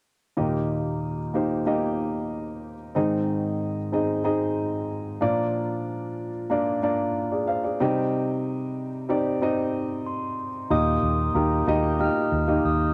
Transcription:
0.37 D#2 A#2 A#3 D#4 G4 D#5
1.34 A#3 D#4 G4 C5
1.66 A#3 D#4 G4 D#5
2.95 G#2 D#3 C4 D#4 G#4 D#5
3.92 C4 D#4 G#4 D#5
4.24 C4 D#4 G#4 D#5
5.21 A#2 F3 A#3 D4 F4 D5
6.50 A#3 D4 F4 D5
6.83 A#3 D4 F4 D5
7.32 G#4 D5
7.47 C5 F5
7.64 G#4 D5
7.80 C3 G3 C4 D#4 G4 D#5
9.09 C4 D#4 G4 D5
9.41 C4 D#4 G4 D#5
10.06 C6
10.70 D#2 A#2 D#3 A#3 D#4 G4 D#5 D#6
11.03 D#2
11.34 D#2 A#3 D#4 G4 A#4
11.67 D#2 A#3 D#4 G4 D#5
11.99 A#3 D#4 G4 D#5 F6
12.32 D#2
12.48 A#3 D#4 G4 D#5
12.65 D#2 D#6

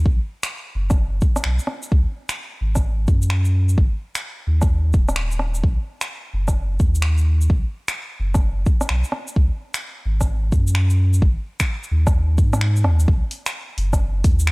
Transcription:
0.05 B1, kick
0.43 finger snap, shaker
0.75 F#1
0.90 kick, cross-stick, shaker
1.21 kick, shaker
1.36 cross-stick, shaker
1.44 B1, finger snap
1.59 shaker
1.67 cross-stick
1.83 shaker
1.92 C#2, kick
2.29 finger snap, shaker
2.61 G#1
2.75 kick, cross-stick, shaker
3.07 F#2, kick, shaker
3.22 shaker
3.30 finger snap
3.45 shaker
3.69 shaker
3.78 G#1, kick
4.15 finger snap, shaker
4.47 D#2
4.61 kick, cross-stick, shaker
4.93 D#1, kick, shaker
5.09 cross-stick, shaker
5.16 finger snap
5.31 shaker
5.39 cross-stick
5.55 shaker
5.63 B1, kick
6.01 finger snap, shaker
6.34 F#1
6.48 kick, cross-stick, shaker
6.79 D#2, kick, shaker
6.95 shaker
7.02 finger snap
7.18 shaker
7.41 shaker
7.50 B1, kick
7.88 finger snap, shaker
8.20 F#1
8.34 kick, cross-stick, shaker
8.66 kick, shaker
8.81 cross-stick, shaker
8.89 B1, finger snap
9.04 shaker
9.12 cross-stick
9.28 shaker
9.36 C#2, kick
9.74 finger snap, shaker
10.05 G#1
10.21 kick, cross-stick, shaker
10.52 F#2, kick, shaker
10.67 shaker
10.75 finger snap
10.90 shaker
11.13 shaker
11.22 G#1, kick
11.60 finger snap, kick, shaker
11.83 shaker
11.91 D#2
12.07 kick, cross-stick, shaker
12.38 G#2, kick, shaker
12.53 cross-stick, shaker
12.61 finger snap
12.76 shaker
12.84 D#2, cross-stick
13.00 shaker
13.08 B1, kick
13.31 open hi-hat
13.46 finger snap, shaker
13.78 F#1, open hi-hat
13.93 kick, cross-stick, shaker
14.24 D#2, kick, open hi-hat, shaker
14.39 shaker
14.47 finger snap

